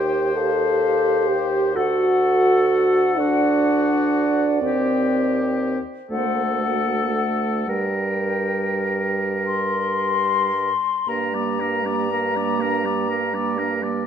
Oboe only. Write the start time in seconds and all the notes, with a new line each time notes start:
Already playing: C5
1.76 A4
3.20 F#4
4.63 G4
6.10 A4
7.68 A#4
11.08 A#4
11.34 D5
11.60 A#4
11.86 D5
12.11 A#4
12.36 D5
12.61 A#4
12.85 D5
13.09 A#4
13.34 D5
13.58 A#4
13.83 D5